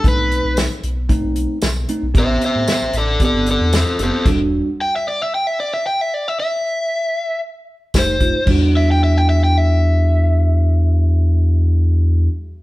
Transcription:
<<
  \new Staff \with { instrumentName = "Overdriven electric guitar" } { \time 4/4 \key e \minor \tempo 4 = 114 b'4 r2. | <c'' e''>8 <c'' e''>8 <c'' e''>8 <a' d''>8 <a' d''>8 <a' d''>8 <c' a'>8 <c' a'>8 | r4 g''16 e''16 d''16 e''16 g''16 e''16 d''16 e''16 g''16 e''16 d''16 e''16 | e''2 r4 c''4 |
r8 e''16 g''16 e''16 g''16 e''16 g''16 e''2~ | e''1 | }
  \new Staff \with { instrumentName = "Tine electric piano" } { \time 4/4 \key e \minor <a c' dis'>4 r4 <a c' dis'>4 r8 <a c' dis'>8 | <b c' g'>4 r4 <b c' g'>4 r8 <b c' g'>8 | <g d' fis'>4 r2. | r2. <a ees' g'>8 <a ees' f'>8 |
<g d' fis'>1~ | <g d' fis'>1 | }
  \new Staff \with { instrumentName = "Sub bass" } { \clef bass \time 4/4 \key e \minor b,,8. b,,8 r16 b,,8. b,,8 r16 b,,8 r16 b,,16 | a,,8 r16 a,16 r16 a,,16 a,,8 r16 g,,8 e,8 r16 fis,,16 r16 | e,,8. r2. r16 | r2. f,,8 f,,16 r16 |
e,1~ | e,1 | }
  \new DrumStaff \with { instrumentName = "Drums" } \drummode { \time 4/4 <hh bd>8 hh8 <hh sn tamb>8 hh8 <hh bd>8 hh8 <hh sn tamb>8 hh8 | <hh bd>8 hh8 <hh sn tamb>8 hh8 <hh bd>8 hh8 <hh sn tamb>8 hh8 | <cymc hh bd>4 r4 r4 r4 | r4 r4 r4 <hh bd sn tamb>8 <hh bd>8 |
<cymc bd>4 r4 r4 r4 | r4 r4 r4 r4 | }
>>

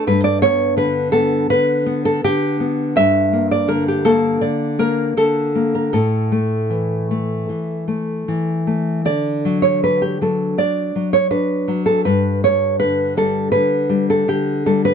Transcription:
\new Staff \with { instrumentName = "Nylon-string guitar" } { \time 4/4 \key g \lydian \tempo 4 = 81 << { b'16 d''16 cis''8 b'8 a'8 b'8. a'16 g'4 | e''8. d''16 bes'16 g'16 a'8 d''8 bes'8 a'8. bes'16 | a'2.~ a'8 r8 | d''8. cis''16 b'16 g'16 a'8 d''8. cis''16 b'8. a'16 |
b'8 cis''8 b'8 a'8 b'8. a'16 g'8 a'16 b'16 | } \\ { g,8 b8 d8 b8 d8 b8 d8 b8 | g,8 bes8 d8 bes8 d8 bes8 d8 bes8 | a,8 a8 e8 a8 e8 a8 e8 a8 | d8 fis8 d'8 fis8 d'8 fis8 d'8 fis8 |
g,8 g8 d8 g8 d8 g8 d8 g8 | } >> }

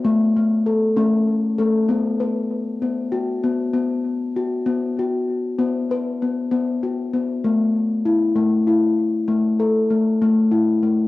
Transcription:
<<
  \new Staff \with { instrumentName = "Steel tongue drum" } { \time 6/8 \key a \mixolydian \tempo 4. = 65 r8 a8 a'8 cis'4 a'8 | b8 b'4 b8 fis'8 r8 | r4 fis'8 r8 fis'4 | r8 b'8 b4 fis'8 b8 |
r4 e'8 a8 e'4 | a8 a'8 a4 e'8 a8 | }
  \new Staff \with { instrumentName = "Steel tongue drum" } { \time 6/8 \key a \mixolydian a4. a4 a8 | r2 r8 b8 | b4. b4. | b4. b4. |
a4. r4. | r4. a4. | }
>>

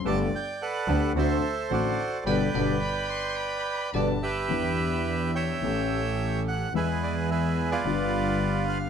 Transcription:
<<
  \new Staff \with { instrumentName = "Violin" } { \time 4/4 \key g \major \tempo 4 = 108 r1 | r4 b''8 c'''8 b''4 a''4 | \key e \minor r1 | r1 | }
  \new Staff \with { instrumentName = "Bandoneon" } { \time 4/4 \key g \major << { a''8 g''8 fis''4 e''4 d''4 | g''2. d''8 e''8~ | \key e \minor e''4. g''2 fis''8 | e''8 d''8 e''8. d''4.~ d''16 f''8 | } \\ { d''4 <a' b'>4 <a' c''>4 <fis' a'>4 | <b' d''>2. r8 <g' b'>8~ | <g' b'>4. <cis'' e''>2 r8 | <gis' b'>4 <gis' b'>8. <f' b'>2 r16 | } >> }
  \new Staff \with { instrumentName = "Vibraphone" } { \time 4/4 \key g \major r1 | <a' b' d''>8 <a' b' d''>8 r2 <a' b' d''>8 r8 | \key e \minor r1 | r1 | }
  \new Staff \with { instrumentName = "Bandoneon" } { \time 4/4 \key g \major <b g' a'>8 r4 <b g' a'>8 <c' d' fis'>8 r8 <c' d' fis'>8 r8 | <b d' g'>8 <b d' g'>8 r2 <b d' g'>8 r8 | \key e \minor <d' e' g'>2 <cis' g' a'>2 | <b e' gis'>2 <b f' g'>2 | }
  \new Staff \with { instrumentName = "Grand piano" } { \clef bass \time 4/4 \key g \major <g,, g, d a b g'>8 r4 <d, d a b g'>8 <d, d a c' fis'>8 r8 <a,, a, d a c' fis'>8 r8 | <b, d g>8 <b, d g>8 r2 <b, d g>8 r8 | \key e \minor <e, e b d' g'>2 <a,, a, e a cis' g'>2 | <e, e gis b gis'>2 <g,, g, d g b f'>2 | }
  \new Staff \with { instrumentName = "Double bass" } { \clef bass \time 4/4 \key g \major g,,8 r4 d,8 d,8 r8 a,,8 r8 | g,,8 g,,8 r2 g,,8 r8 | \key e \minor e,2 a,,2 | e,2 g,,2 | }
>>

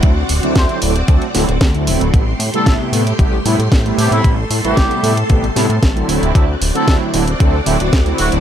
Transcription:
<<
  \new Staff \with { instrumentName = "Trumpet section" } { \time 4/4 \key a \dorian \tempo 4 = 114 r4 c''16 c''16 r2 r8 | r8. a'16 r2 r8 g'16 e'16 | r8. g'4 r2 r16 | r8. a'16 r2 r8 fis'16 r16 | }
  \new Staff \with { instrumentName = "String machine" } { \time 4/4 \key a \dorian << { <c' d''>1 | <a c'''>1~ | <a c'''>2.~ <a c'''>8 <c' d''>8~ | <c' d''>1 | } \\ { fis'1 | g'1 | a'2.~ a'8 fis'8~ | fis'1 | } >> }
  \new Staff \with { instrumentName = "Analog polysynth" } { \time 4/4 \key a \dorian <d fis a c' e'>16 r8 <d fis a c' e'>8. <d fis a c' e'>16 r16 <d fis a c' a'>16 r16 <d fis a c' e'>16 r8 <d fis a c' e'>8. | <c g a b e'>16 r8 <c g a b e'>8. <c g a b e'>16 r16 <c g a b g'>16 r16 <c g a b e'>16 r8 <c g a b e'>8. | <c g a b e'>16 r8 <c g a b e'>8. <c g a b e'>16 r16 <c g a b g'>16 r16 <c g a b e'>16 r8 <d fis a c' e'>8. | <d fis a c' e'>16 r8 <d fis a c' e'>8. <d fis a c' e'>16 r16 <d fis a c' a'>16 r16 <d fis a c' e'>16 r8 <d fis a c' e'>8. | }
  \new Staff \with { instrumentName = "Analog synth bass" } { \clef bass \time 4/4 \key a \dorian d,8 d,,16 d,16 d,16 r16 d,,8 d,16 r16 d,,16 d,,16 d,8 d,,16 d,,16 | a,,8 a,16 r16 a,,16 r16 a,8 a,,8 a,16 a,16 a,,8 a,16 a,16 | a,,8 a,16 a,,16 a,,16 r16 a,8 a,,8 a,16 a,16 a,,8 d,,16 d,,16 | d,8 d,,16 r16 d,16 r16 d,,8 d,8 d,,16 d,,16 d,8 d,,16 d,,16 | }
  \new DrumStaff \with { instrumentName = "Drums" } \drummode { \time 4/4 <hh bd>8 hho16 hh16 <hh bd sn>16 hh16 hho16 hh16 <hh bd>16 hh16 <hho sn>16 hh16 <hh bd sn>16 hh16 hho16 hh16 | <hh bd>8 hho16 hh16 <hh bd sn>8 hho16 hh16 <hh bd>8 hho16 hh16 <hh bd sn>16 hh16 hho16 hh16 | <hh bd>8 hho16 hh16 <hh bd sn>16 hh16 hho16 hh16 <hh bd>16 hh16 <hho sn>16 hh16 <hh bd sn>16 hh16 hho16 hh16 | <hh bd>8 hho16 hh16 <hh bd sn>8 hho16 hh16 <hh bd>8 hho16 hh16 <hh bd sn>16 hh16 hho16 hh16 | }
>>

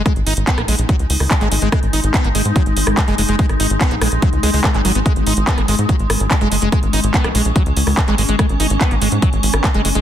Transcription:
<<
  \new Staff \with { instrumentName = "Synth drone" } { \time 4/4 \key gis \minor \tempo 4 = 144 <gis dis'>1~ | <gis dis'>1~ | <gis dis'>1 | cis'1~ |
cis'1~ | cis'1 | }
  \new Staff \with { instrumentName = "Acid bass" } { \clef bass \time 4/4 \key gis \minor gis16 r16 dis'16 r16 b16 ais16 gis16 r16 fis16 r8. gis16 gis16 gis16 gis16 | gis16 r16 dis'16 r16 b16 ais16 gis16 r16 fis16 r8. gis16 gis16 gis16 gis16 | gis16 r16 dis'16 r16 b16 ais16 gis16 r16 fis16 r16 gis16 gis16 r16 gis16 fis16 b16 | gis16 r16 dis'16 r16 b16 ais16 gis16 r16 fis16 r8. gis16 gis16 gis16 gis16 |
gis16 r16 dis'16 r16 b16 ais16 gis16 r16 fis16 r8. gis16 gis16 gis16 gis16 | gis16 r16 dis'16 r16 b16 ais16 gis16 r16 fis16 r8. gis16 gis16 gis16 gis16 | }
  \new Staff \with { instrumentName = "Analog synth bass" } { \clef bass \time 4/4 \key gis \minor r16 gis,,16 gis,,16 gis,,16 r16 ais,,16 ais,,16 ais,,16 r16 cis,16 cis,16 cis,16 r16 gis,,16 gis,,16 gis,,16 | r16 gis,,16 gis,,16 gis,,16 r16 gis,,16 gis,,16 gis,16 r16 gis,,16 gis,,16 gis,,16 r16 fis,,16 fis,,16 fis,,16 | r16 gis,,16 gis,,16 gis,,16 r16 ais,,16 ais,,16 ais,,16 r16 cis,16 cis,16 cis,16 r16 gis,,16 gis,,16 gis,,16 | r16 gis,,16 gis,,16 gis,,16 r16 gis,,16 gis,,16 gis,16 r16 gis,,16 gis,,16 gis,,16 r16 fis,,16 fis,,16 fis,,16 |
r16 gis,,16 gis,,16 gis,,16 r16 ais,,16 ais,,16 ais,,16 r16 cis,16 cis,16 cis,16 r16 gis,,16 gis,,16 gis,,16 | r16 gis,,16 gis,,16 gis,,16 r16 gis,,16 gis,,16 gis,16 r16 gis,,16 gis,,16 gis,,16 r16 fis,,16 fis,,16 fis,,16 | }
  \new DrumStaff \with { instrumentName = "Drums" } \drummode { \time 4/4 <hh bd ss>16 hh16 hho16 hh16 <hc hh bd>16 <hh ss>16 hho16 hh16 <hh bd>16 hh16 hho16 <hho ss>16 <hc hh bd>16 <hc hh>16 hho16 hh16 | <hh bd ss>16 hh16 hho16 hh16 <hc hh bd>16 hh16 hho16 hh16 <hh bd>16 hh16 hho16 <hh ss>16 <hc hh bd>16 hh16 hho16 hh16 | <hh bd>16 <hh ss>16 hho16 hh16 <hc hh bd>16 hh16 <hho ss>16 hh16 <hh bd>16 hh16 hho16 hho16 <hc bd ss>16 <hc hh>16 hho16 hh16 | <hh bd>16 hh16 hho16 hh16 <hc hh bd>16 <hh ss>16 hho16 hh16 <hh bd>16 hh16 <hho ss>16 hh16 <hc hh bd>16 hh16 hho16 hh16 |
<hh bd ss>16 hh16 hho16 hh16 <hc hh bd>16 <hh ss>16 hho16 hh16 <hh bd>16 hh16 hho16 <hho ss>16 <hc hh bd>16 <hc hh>16 hho16 hh16 | <hh bd ss>16 hh16 hho16 hh16 <hc hh bd>16 hh16 hho16 hh16 <hh bd>16 hh16 hho16 <hh ss>16 <hc hh bd>16 hh16 hho16 hh16 | }
>>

